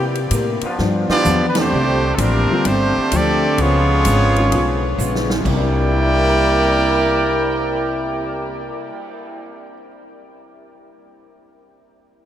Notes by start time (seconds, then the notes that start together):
Already playing: C3 G3 A#3 E4
0.15 ride
0.31 A2 C3 G3 A#3 E4, kick, hi-hat pedal, ride
0.61 F3 B3 D4 F4, muted upright bass stroke, ride
0.77 G2 F3 B3 D4, snare
1.08 F3 B3 D4 F4 G4 D5, muted upright bass stroke, snare
1.24 E2 G2 F3 B3 D4, hi-hat pedal, mid tom
1.48 B4
1.55 D3 A3 C4 D4 G4 C5, snare, ride
1.72 C2 F3 A3 D4 G4
2.15 A1 F3 A4, kick, hi-hat pedal, ride
2.19 C3 D3 G3 A3 A#3 C4 D4 G4 A#4
2.51 D3 G3 C4 F4
2.65 G1 D3 F3 A3 C4 D4 G4 C5, kick, ride
2.97 muted upright bass stroke
3.12 D2 D3 F3 A3 C4 D4 G4 A4 D5, kick, hi-hat pedal, ride
3.58 C#2 C#3 F3 G#3 B3 C#4 F4 G#4 C#5, kick, ride
3.63 F4
4.05 G#1 C#3 G#3 B3 F4, kick, hi-hat pedal, ride
4.36 D#3 G#3 C#4 F4, ride
4.51 B1 C#3 G#3 B3 F4, kick, ride
4.98 A#1 C#3 G#3 B3 F4, hi-hat pedal
5.15 snare
5.30 snare
5.35 C3
5.40 C3 G3
5.45 C2 C3 G3 A#3 E4 A#4 D5 G5, kick, crash
5.49 A#3
5.54 D4
5.59 E4
5.76 cymbal swell
5.93 G4
6.00 A#4
6.09 D5
6.18 G5
6.28 A#5
6.38 D6
6.50 G6
6.62 A#6